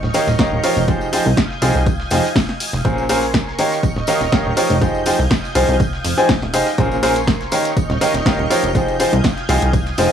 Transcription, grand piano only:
0.14 0.26 D#3 medium
0.14 0.26 D#4 medium
0.14 0.26 G4 medium
0.14 0.26 A#4 medium
0.14 0.26 C#5 medium
0.14 0.26 F5 medium
0.39 0.56 D#3 medium
0.39 0.56 D#4 medium
0.39 0.56 G4 medium
0.39 0.56 A#4 medium
0.39 0.56 C#5 medium
0.39 0.56 F5 medium
0.64 0.81 F3 medium
0.64 0.81 D#4 medium
0.64 0.81 G4 medium
0.64 0.81 A#4 medium
0.64 0.81 C#5 medium
0.64 0.81 F5 medium
0.88 1.06 F3 medium
0.88 1.06 D#4 medium
0.88 1.06 G4 medium
0.88 1.06 G#4 medium
0.88 1.06 C5 medium
0.88 1.06 F5 medium
1.13 1.24 F3 medium
1.13 1.24 D#4 medium
1.13 1.24 G4 medium
1.13 1.24 G#4 medium
1.13 1.24 C5 medium
1.13 1.24 F5 medium
1.62 1.79 F3 loud
1.62 1.79 D#4 medium
1.62 1.79 G4 medium
1.62 1.79 G#4 medium
1.62 1.79 C5 medium
1.62 1.79 F5 loud
2.11 2.22 F3 medium
2.11 2.22 D#4 medium
2.11 2.22 G4 medium
2.11 2.22 G#4 medium
2.11 2.22 C5 medium
2.11 2.22 F5 medium
2.85 3.02 A#2 medium
2.85 3.02 C#4 medium
2.85 3.02 G#4 medium
2.85 3.02 A#4 medium
2.85 3.02 C5 medium
2.85 3.02 F5 loud
3.09 3.21 A#2 medium
3.09 3.21 C#4 medium
3.09 3.21 G#4 medium
3.09 3.21 A#4 medium
3.09 3.21 C5 medium
3.09 3.21 F5 loud
3.59 3.76 D#3 medium
3.59 3.76 D#4 medium
3.59 3.76 G4 medium
3.59 3.76 A#4 medium
3.59 3.76 C#5 medium
3.59 3.76 F5 medium
4.08 4.19 D#3 medium
4.08 4.19 D#4 medium
4.08 4.19 G4 medium
4.08 4.19 A#4 medium
4.08 4.19 C#5 medium
4.08 4.19 F5 medium
4.32 4.50 D#3 medium
4.32 4.50 D#4 medium
4.32 4.50 G4 medium
4.32 4.50 A#4 medium
4.32 4.50 C#5 medium
4.32 4.50 F5 medium
4.57 4.74 F3 medium
4.57 4.74 D#4 medium
4.57 4.74 G4 medium
4.57 4.74 A#4 medium
4.57 4.74 C#5 medium
4.57 4.74 F5 loud
4.81 4.99 F3 medium
4.81 4.99 D#4 medium
4.81 4.99 G4 medium
4.81 4.99 G#4 medium
4.81 4.99 C5 medium
4.81 4.99 F5 medium
5.06 5.17 F3 medium
5.06 5.17 D#4 medium
5.06 5.17 G4 medium
5.06 5.17 G#4 medium
5.06 5.17 C5 medium
5.06 5.17 F5 medium
5.55 5.73 F3 medium
5.55 5.73 D#4 medium
5.55 5.73 G4 medium
5.55 5.73 G#4 medium
5.55 5.73 C5 medium
5.55 5.73 F5 loud
6.18 6.28 F3 medium
6.18 6.28 D#4 medium
6.18 6.28 G4 medium
6.18 6.28 G#4 medium
6.18 6.28 C5 medium
6.18 6.28 G#5 loud
6.54 6.65 D#4 medium
6.54 6.65 G4 medium
6.54 6.65 G#4 medium
6.54 6.65 C5 medium
6.54 6.65 F5 loud
6.78 6.96 A#2 medium
6.78 6.96 C#4 medium
6.78 6.96 G#4 medium
6.78 6.96 A#4 medium
6.78 6.96 C5 medium
6.78 6.96 F5 loud
7.03 7.14 A#2 medium
7.03 7.14 C#4 medium
7.03 7.14 G#4 medium
7.03 7.14 A#4 medium
7.03 7.14 C5 medium
7.03 7.14 F5 loud
7.52 7.69 D#3 medium
7.52 7.70 D#4 medium
7.52 7.69 G4 medium
7.52 7.69 A#4 medium
7.52 7.70 C#5 medium
7.52 7.69 F5 medium
8.01 8.13 D#3 medium
8.01 8.12 D#4 medium
8.01 8.13 G4 medium
8.01 8.12 A#4 medium
8.01 8.13 C#5 medium
8.01 8.13 F5 medium
8.26 8.43 D#3 medium
8.26 8.43 D#4 medium
8.26 8.43 G4 medium
8.26 8.43 A#4 medium
8.26 8.43 C#5 medium
8.26 8.43 F5 medium
8.50 8.68 F3 medium
8.50 8.68 D#4 medium
8.50 8.68 G4 medium
8.50 8.68 A#4 medium
8.50 8.68 C#5 medium
8.50 8.68 F5 medium
8.75 8.93 F3 medium
8.75 8.93 D#4 medium
8.75 8.93 G4 medium
8.75 8.93 G#4 medium
8.75 8.93 C5 medium
8.75 8.93 F5 medium
9.00 9.11 F3 medium
9.00 9.11 D#4 medium
9.00 9.11 G4 medium
9.00 9.11 G#4 medium
9.00 9.11 C5 medium
9.00 9.11 F5 medium
9.49 9.66 F3 medium
9.49 9.66 D#4 medium
9.49 9.66 G4 medium
9.49 9.66 G#4 medium
9.49 9.66 C5 medium
9.49 9.66 F5 loud
9.98 10.09 F3 medium
9.98 10.09 D#4 medium
9.98 10.09 G4 medium
9.98 10.09 G#4 medium
9.98 10.09 C5 medium
9.98 10.09 F5 medium

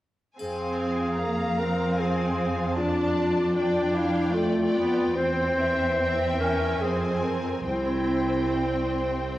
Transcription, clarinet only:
0.40 1.60 G#4 medium
1.59 2.01 A#4 soft
2.00 2.76 G#4 medium
2.77 3.96 F4 medium
3.95 4.34 E4 medium
4.32 5.18 F4 medium
5.16 6.23 C5 medium
6.40 6.82 A#4 medium
6.81 7.37 G#4 medium
7.64 9.33 E4 medium

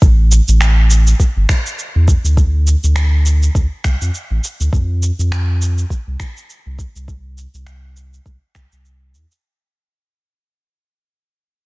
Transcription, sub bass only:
0.02 0.40 A1 loud
0.48 1.14 A1 loud
1.36 1.45 G1 medium
1.95 2.15 E2 medium
2.24 2.75 D2 loud
2.84 3.49 D2 loud
3.55 3.67 D2 medium
3.84 3.96 C2 loud
4.01 4.10 F2 medium
4.30 4.39 A1 medium
4.60 4.69 D2 medium
4.73 5.11 F2 medium
5.19 5.84 F2 loud
6.07 6.16 C2 medium
6.66 6.86 C2 medium
6.95 7.46 C2 medium
7.54 8.19 C2 medium
8.26 8.37 C2 medium
8.55 8.67 C2 medium
8.72 9.15 C2 medium
9.14 9.25 E2 medium

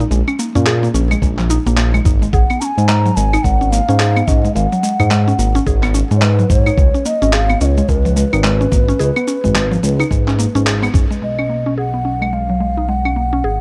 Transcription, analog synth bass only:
0.11 0.22 A#1 loud
0.55 0.88 A#2 medium
0.94 1.15 A#1 medium
1.22 1.58 A#1 medium
1.66 1.99 A#1 medium
2.05 2.26 G#1 loud
2.33 2.44 G#1 loud
2.77 3.11 G#2 medium
3.17 3.37 G#1 medium
3.44 3.80 G#1 medium
3.89 4.22 G#2 medium
4.28 4.48 G#2 medium
4.55 4.66 G#1 medium
5.00 5.33 G#2 medium
5.39 5.59 G#1 medium
5.67 6.02 G#1 loud
6.11 6.44 G#2 medium
6.50 6.70 G#2 medium
6.78 6.89 C#2 loud
7.22 7.55 G#1 medium
7.61 7.81 C#2 medium
7.89 8.24 C#2 loud
8.33 8.66 G#1 medium
8.72 8.93 G#1 medium
9.00 9.11 C#2 medium
9.44 9.77 G#1 medium
9.83 10.04 C#2 medium
10.11 10.47 G#1 medium
10.55 10.88 G#1 medium
10.94 11.05 G#1 medium
11.22 13.42 B1 medium
13.45 13.61 G#1 medium

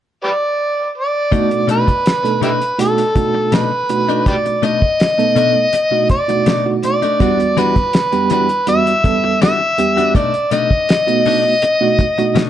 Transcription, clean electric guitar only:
1.32 1.51 B2 medium
1.32 1.51 A3 medium
1.32 1.50 D4 medium
1.32 1.50 D#4 medium
1.51 muted clean electric guitar stroke soft
1.68 1.87 B2 medium
1.68 1.88 A3 medium
1.68 1.87 D4 medium
1.68 1.86 D#4 medium
1.87 muted clean electric guitar stroke soft
2.41 2.61 B2 medium
2.41 2.61 A3 medium
2.41 2.60 D4 medium
2.41 2.59 D#4 medium
2.61 muted clean electric guitar stroke soft
2.79 muted clean electric guitar stroke soft
3.16 muted clean electric guitar stroke soft
3.35 muted clean electric guitar stroke soft
3.52 3.71 B2 medium
3.52 3.72 A3 medium
3.52 3.71 D4 medium
3.52 3.71 D#4 medium
3.72 muted clean electric guitar stroke soft
3.90 muted clean electric guitar stroke soft
4.09 4.31 A3 soft
4.09 4.30 D4 soft
4.09 4.30 D#4 medium
4.46 muted clean electric guitar stroke soft
4.62 4.82 B2 medium
4.62 4.82 A3 medium
4.62 4.81 D4 medium
4.62 4.81 D#4 medium
4.82 muted clean electric guitar stroke soft
5.36 5.55 B2 medium
5.36 5.55 A3 medium
5.36 5.55 D4 medium
5.36 5.54 D#4 medium
5.55 muted clean electric guitar stroke soft
5.73 muted clean electric guitar stroke soft
6.10 muted clean electric guitar stroke soft
6.30 muted clean electric guitar stroke soft
6.46 6.66 B2 medium
6.46 6.66 A3 medium
6.46 6.65 D4 medium
6.46 6.65 D#4 medium
6.66 muted clean electric guitar stroke soft
6.84 muted clean electric guitar stroke soft
7.02 7.21 A3 soft
7.02 7.20 D4 soft
7.02 7.20 D#4 soft
7.20 7.39 E3 medium
7.20 7.40 G3 medium
7.20 7.40 D4 medium
7.20 7.39 F#4 medium
7.40 muted clean electric guitar stroke soft
7.57 7.76 E3 medium
7.57 7.77 G3 medium
7.57 7.76 D4 medium
7.57 7.75 F#4 medium
7.76 muted clean electric guitar stroke soft
8.31 8.50 E3 medium
8.31 8.50 G3 medium
8.31 8.49 D4 medium
8.31 8.49 F#4 medium
8.50 muted clean electric guitar stroke soft
8.67 muted clean electric guitar stroke soft
9.05 muted clean electric guitar stroke soft
9.24 muted clean electric guitar stroke soft
9.41 9.60 E3 medium
9.41 9.61 G3 medium
9.41 9.60 D4 medium
9.41 9.59 F#4 medium
9.61 muted clean electric guitar stroke soft
9.78 muted clean electric guitar stroke soft
9.97 10.15 G3 soft
9.97 10.14 D4 soft
9.97 10.15 F#4 medium
10.14 10.34 B2 medium
10.14 10.34 A3 medium
10.14 10.34 D4 medium
10.14 10.33 D#4 medium
10.51 10.70 B2 medium
10.51 10.71 A3 medium
10.51 10.70 D4 medium
10.51 10.70 D#4 medium
10.71 muted clean electric guitar stroke soft
11.26 11.45 B2 medium
11.26 11.45 A3 medium
11.26 11.45 D4 medium
11.26 11.44 D#4 medium
11.45 muted clean electric guitar stroke soft
11.63 muted clean electric guitar stroke soft
12.00 muted clean electric guitar stroke soft
12.18 muted clean electric guitar stroke soft
12.35 12.50 B2 medium
12.35 12.50 A3 medium
12.35 12.50 D4 medium
12.35 12.50 D#4 medium

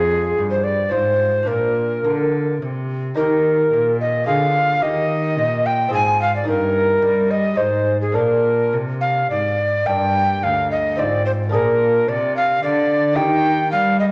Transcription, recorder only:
0.00 0.49 G#4 medium
0.51 0.65 C5 medium
0.64 0.93 D5 medium
0.92 1.49 C5 medium
1.47 2.61 A#4 medium
3.17 3.97 A#4 medium
4.00 4.26 D#5 medium
4.27 4.84 F5 medium
4.83 5.68 D#5 medium
5.66 5.93 G5 medium
5.94 6.20 G#5 medium
6.22 6.34 F5 medium
6.36 6.48 D5 medium
6.48 7.32 A#4 loud
7.31 7.59 D#5 medium
7.57 8.00 C5 medium
8.01 8.16 G#4 medium
8.15 8.77 A#4 medium
9.01 9.28 F5 medium
9.30 9.88 D5 medium
9.86 10.45 G5 loud
10.43 10.71 F5 medium
10.71 11.00 D#5 medium
10.99 11.25 D5 medium
11.26 11.32 C5 medium
11.54 12.10 A#4 medium
12.09 12.36 D5 medium
12.37 12.63 F5 medium
12.64 13.18 D5 medium
13.16 13.71 G5 loud
13.72 13.99 F5 medium
14.00 14.06 D#5 medium

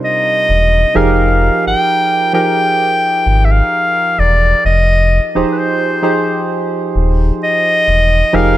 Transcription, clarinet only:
0.04 0.98 D#5 loud
0.96 1.67 F5 loud
1.67 2.30 G5 loud
2.34 3.46 G5 loud
3.45 3.53 E5 medium
3.52 4.21 F5 loud
4.19 4.65 D5 medium
4.66 5.28 D#5 loud
5.52 5.60 B4 medium
5.58 6.50 C5 medium
7.44 8.37 D#5 loud
8.35 8.58 F5 loud

